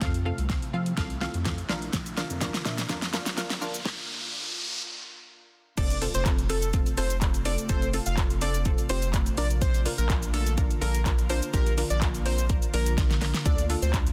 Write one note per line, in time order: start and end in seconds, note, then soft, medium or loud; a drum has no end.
0.00 0.32 F2 loud
0.00 1.66 C3 medium
0.00 1.66 A3 medium
0.00 0.17 C4 loud
0.00 1.68 E4 medium
0.00 0.17 F4 loud
0.00 0.17 A4 loud
0.00 0.17 F5 loud
0.00 kick loud
0.00 snare medium
0.00 closed hi-hat medium
0.00 riser medium
0.14 closed hi-hat medium
0.25 0.41 C4 medium
0.25 0.41 F4 medium
0.25 0.41 A4 medium
0.25 0.41 F5 loud
0.38 0.58 C2 loud
0.38 closed hi-hat medium
0.49 0.65 C4 medium
0.49 0.65 F4 medium
0.49 0.65 A4 medium
0.49 0.65 F5 loud
0.49 kick loud
0.49 snare medium
0.49 closed hi-hat medium
0.62 closed hi-hat medium
0.73 0.93 F3 medium
0.73 0.89 C4 medium
0.73 0.89 F4 medium
0.73 0.89 A4 medium
0.73 0.89 F5 loud
0.86 closed hi-hat medium
0.97 1.28 C2 medium
0.97 1.13 C4 loud
0.97 1.13 F4 loud
0.97 1.13 A4 loud
0.97 1.13 F5 loud
0.97 kick loud
0.97 snare medium
0.97 closed hi-hat medium
1.10 closed hi-hat medium
1.21 1.37 C4 medium
1.21 1.37 F4 medium
1.21 1.37 A4 medium
1.21 1.37 F5 loud
1.21 snare medium
1.34 1.63 F2 medium
1.34 closed hi-hat medium
1.45 1.61 C4 medium
1.45 1.61 F4 medium
1.45 1.61 A4 medium
1.45 1.61 F5 medium
1.45 kick loud
1.45 snare medium
1.45 closed hi-hat medium
1.58 closed hi-hat soft
1.69 1.89 A#1 medium
1.69 3.83 D3 medium
1.69 3.83 A#3 medium
1.69 2.08 D4 medium
1.69 2.08 F4 medium
1.69 3.83 F4 medium
1.69 2.08 A#4 medium
1.69 2.09 F5 loud
1.69 snare medium
1.82 closed hi-hat soft
1.93 2.24 A#1 loud
1.93 kick loud
1.93 snare medium
1.93 closed hi-hat medium
1.93 shaker medium
2.06 closed hi-hat medium
2.06 shaker medium
2.17 2.33 D4 medium
2.17 2.33 F4 medium
2.17 2.33 A#4 medium
2.17 2.33 F5 medium
2.17 snare medium
2.17 shaker medium
2.30 2.50 F2 loud
2.30 closed hi-hat medium
2.30 shaker medium
2.41 2.57 D4 medium
2.41 2.57 F4 medium
2.41 2.57 A#4 medium
2.41 2.57 F5 loud
2.41 kick loud
2.41 snare loud
2.41 closed hi-hat medium
2.41 shaker medium
2.54 snare loud
2.54 closed hi-hat medium
2.54 shaker medium
2.65 2.85 A#2 medium
2.65 2.81 D4 medium
2.65 2.81 F4 medium
2.65 2.81 A#4 medium
2.65 2.81 E5 loud
2.65 snare loud
2.65 shaker medium
2.78 snare loud
2.78 closed hi-hat medium
2.78 shaker medium
2.89 3.20 F2 medium
2.89 3.05 D4 loud
2.89 3.05 F4 loud
2.89 3.05 A#4 loud
2.89 3.05 F5 loud
2.89 kick loud
2.89 snare loud
2.89 closed hi-hat medium
2.89 shaker medium
3.02 snare loud
3.02 closed hi-hat medium
3.02 shaker medium
3.13 3.29 D4 medium
3.13 3.29 F4 medium
3.13 3.29 A#4 medium
3.13 3.29 F5 loud
3.13 snare loud
3.13 shaker medium
3.26 3.55 A#1 medium
3.26 snare loud
3.26 closed hi-hat medium
3.26 shaker medium
3.37 3.53 D4 medium
3.37 3.53 F4 medium
3.37 3.53 A#4 medium
3.37 3.53 F5 loud
3.37 snare loud
3.37 closed hi-hat medium
3.37 shaker medium
3.50 snare loud
3.50 closed hi-hat soft
3.50 shaker medium
3.61 3.81 A#1 medium
3.61 3.77 D4 medium
3.61 3.77 F4 medium
3.61 3.77 A#4 medium
3.61 3.77 F5 loud
3.61 shaker medium
3.74 closed hi-hat medium
3.74 shaker medium
3.85 kick loud
3.85 snare medium
5.77 6.08 F1 loud
5.77 9.34 C3 medium
5.77 9.34 A3 medium
5.77 5.93 C4 loud
5.77 14.13 F4 medium
5.77 5.93 F4 medium
5.77 5.93 A4 loud
5.77 5.97 D5 loud
5.77 kick loud
5.77 closed hi-hat medium
5.77 crash loud
5.77 impact medium
5.77 shaker medium
5.90 closed hi-hat medium
5.90 shaker medium
6.01 6.17 C4 medium
6.01 6.17 F4 medium
6.01 6.17 A4 medium
6.01 open hi-hat medium
6.01 shaker medium
6.14 6.83 F1 medium
6.14 6.24 C5 medium
6.14 closed hi-hat medium
6.14 shaker medium
6.25 6.41 C4 medium
6.25 6.41 F4 medium
6.25 6.41 A4 medium
6.25 kick loud
6.25 clap loud
6.25 closed hi-hat medium
6.25 shaker medium
6.39 closed hi-hat medium
6.39 shaker medium
6.49 6.65 C4 medium
6.49 6.65 F4 medium
6.49 6.65 A4 medium
6.49 6.69 A4 medium
6.49 open hi-hat medium
6.49 shaker medium
6.62 closed hi-hat medium
6.62 shaker medium
6.73 6.89 C4 loud
6.73 6.89 F4 medium
6.73 6.89 A4 loud
6.73 kick loud
6.73 closed hi-hat medium
6.73 shaker medium
6.86 closed hi-hat medium
6.86 shaker medium
6.97 7.57 F1 loud
6.97 7.13 C4 medium
6.97 7.13 F4 medium
6.97 7.13 A4 medium
6.97 7.17 C5 medium
6.97 open hi-hat medium
6.97 shaker medium
7.10 closed hi-hat medium
7.10 shaker medium
7.21 7.37 C4 medium
7.21 7.37 F4 medium
7.21 7.37 A4 medium
7.21 kick loud
7.21 clap loud
7.21 closed hi-hat medium
7.21 shaker medium
7.34 closed hi-hat medium
7.34 shaker medium
7.45 7.61 C4 medium
7.45 7.61 F4 medium
7.45 7.61 A4 medium
7.45 7.56 D5 medium
7.45 open hi-hat medium
7.45 shaker medium
7.58 closed hi-hat medium
7.58 shaker medium
7.69 8.00 F1 loud
7.69 7.85 C4 loud
7.69 7.85 F4 medium
7.69 7.85 A4 loud
7.69 7.89 C5 loud
7.69 kick loud
7.69 closed hi-hat medium
7.69 shaker medium
7.82 closed hi-hat medium
7.82 shaker medium
7.93 8.09 C4 medium
7.93 8.09 F4 medium
7.93 8.09 A4 medium
7.93 open hi-hat medium
7.93 shaker medium
8.06 8.75 F1 medium
8.06 8.15 F5 medium
8.06 closed hi-hat medium
8.06 shaker medium
8.17 8.33 C4 medium
8.17 8.33 F4 medium
8.17 8.33 A4 medium
8.17 kick loud
8.17 clap loud
8.17 closed hi-hat medium
8.17 shaker medium
8.30 closed hi-hat medium
8.30 shaker medium
8.41 8.57 C4 medium
8.41 8.57 F4 medium
8.41 8.57 A4 medium
8.41 8.61 D5 medium
8.41 open hi-hat medium
8.41 shaker medium
8.54 closed hi-hat medium
8.54 shaker medium
8.65 8.81 C4 loud
8.65 8.81 F4 medium
8.65 8.81 A4 loud
8.65 kick loud
8.65 closed hi-hat medium
8.65 shaker medium
8.78 closed hi-hat medium
8.78 shaker medium
8.89 9.29 F1 loud
8.89 9.05 C4 medium
8.89 9.05 F4 medium
8.89 9.05 G4 medium
8.89 9.09 C5 medium
8.89 open hi-hat medium
8.89 shaker medium
9.02 closed hi-hat medium
9.02 shaker loud
9.13 9.29 C4 medium
9.13 9.29 F4 medium
9.13 9.29 A4 medium
9.13 kick loud
9.13 clap loud
9.13 closed hi-hat medium
9.13 shaker medium
9.26 closed hi-hat medium
9.26 shaker medium
9.37 9.88 A#1 loud
9.37 14.13 D3 medium
9.37 13.42 A#3 medium
9.37 9.77 D4 medium
9.37 9.77 F4 medium
9.37 9.77 A#4 medium
9.37 9.48 D5 medium
9.37 open hi-hat medium
9.37 shaker medium
9.50 closed hi-hat medium
9.50 shaker medium
9.61 9.81 C5 loud
9.61 kick loud
9.61 closed hi-hat medium
9.61 shaker medium
9.74 closed hi-hat medium
9.74 shaker medium
9.85 10.01 D4 medium
9.85 10.01 F4 medium
9.85 10.01 A#4 medium
9.85 open hi-hat medium
9.85 shaker medium
9.98 10.67 A#1 medium
9.98 10.07 A#4 medium
9.98 closed hi-hat medium
9.98 shaker medium
10.09 10.25 D4 medium
10.09 10.25 F4 medium
10.09 10.25 A#4 medium
10.09 kick loud
10.09 clap loud
10.09 closed hi-hat medium
10.09 shaker medium
10.23 closed hi-hat medium
10.23 shaker medium
10.33 10.49 D4 medium
10.33 10.49 F4 medium
10.33 10.53 A4 medium
10.33 10.49 A#4 medium
10.33 open hi-hat medium
10.33 shaker medium
10.47 closed hi-hat medium
10.47 shaker medium
10.57 10.73 D4 loud
10.57 10.73 F4 medium
10.57 10.73 A#4 loud
10.57 kick loud
10.57 closed hi-hat medium
10.57 shaker medium
10.71 closed hi-hat medium
10.71 shaker medium
10.81 11.41 A#1 loud
10.81 10.97 D4 medium
10.81 10.97 F4 medium
10.81 10.97 A4 medium
10.81 11.01 A#4 medium
10.81 open hi-hat medium
10.81 shaker medium
10.94 closed hi-hat medium
10.94 shaker medium
11.05 11.21 D4 medium
11.05 11.21 F4 medium
11.05 11.21 A#4 medium
11.05 kick loud
11.05 clap loud
11.05 closed hi-hat medium
11.05 shaker medium
11.19 closed hi-hat medium
11.19 shaker medium
11.29 11.45 D4 medium
11.29 11.45 F4 medium
11.29 11.45 A#4 medium
11.29 11.40 C5 medium
11.29 open hi-hat medium
11.29 shaker medium
11.42 closed hi-hat medium
11.42 shaker medium
11.53 11.84 A#1 loud
11.53 11.69 D4 loud
11.53 11.69 F4 medium
11.53 11.69 G4 loud
11.53 11.73 A#4 loud
11.53 kick loud
11.53 closed hi-hat medium
11.53 shaker medium
11.66 closed hi-hat medium
11.66 shaker medium
11.78 11.93 D4 medium
11.78 11.93 F4 medium
11.78 11.93 A#4 medium
11.78 open hi-hat medium
11.78 shaker medium
11.90 12.59 A#1 medium
11.90 11.99 D5 medium
11.90 closed hi-hat medium
11.90 shaker medium
12.01 12.17 D4 medium
12.01 12.17 F4 medium
12.01 12.17 A#4 medium
12.01 kick loud
12.01 clap loud
12.01 closed hi-hat medium
12.01 shaker medium
12.14 closed hi-hat medium
12.14 shaker medium
12.25 12.41 D4 medium
12.25 12.41 F4 medium
12.25 12.41 A#4 medium
12.25 12.45 C5 medium
12.25 open hi-hat medium
12.25 shaker medium
12.38 closed hi-hat medium
12.38 shaker medium
12.49 12.65 D4 loud
12.49 12.65 F4 medium
12.49 12.65 A#4 loud
12.49 kick loud
12.49 closed hi-hat medium
12.49 shaker medium
12.62 closed hi-hat medium
12.62 shaker medium
12.73 13.33 A#1 loud
12.73 12.89 D4 medium
12.73 12.89 F4 medium
12.73 12.93 A#4 medium
12.73 12.89 A#4 medium
12.73 open hi-hat medium
12.73 shaker medium
12.86 closed hi-hat medium
12.86 shaker medium
12.98 13.13 D4 medium
12.98 13.13 F4 medium
12.98 13.13 A#4 medium
12.98 kick loud
12.98 snare medium
12.98 closed hi-hat medium
12.98 shaker medium
13.11 snare medium
13.11 closed hi-hat medium
13.11 shaker medium
13.21 13.37 D4 medium
13.21 13.37 F4 medium
13.21 13.37 A#4 loud
13.21 snare loud
13.21 open hi-hat medium
13.21 shaker medium
13.34 snare loud
13.34 closed hi-hat medium
13.34 shaker medium
13.46 13.76 D2 loud
13.46 14.13 A3 medium
13.46 13.61 D4 loud
13.46 13.61 F4 medium
13.46 13.61 A4 loud
13.46 13.65 D5 loud
13.46 kick loud
13.46 closed hi-hat medium
13.46 shaker medium
13.58 closed hi-hat medium
13.58 shaker medium
13.69 13.85 D4 medium
13.69 13.85 F4 medium
13.69 13.85 A4 medium
13.69 open hi-hat medium
13.69 shaker medium
13.82 14.13 D2 medium
13.82 13.91 C5 medium
13.82 closed hi-hat medium
13.82 shaker medium
13.94 14.09 D4 medium
13.94 14.09 F4 medium
13.94 14.09 C5 medium
13.94 kick loud
13.94 clap loud
13.94 closed hi-hat medium
13.94 shaker medium
14.07 closed hi-hat medium
14.07 shaker medium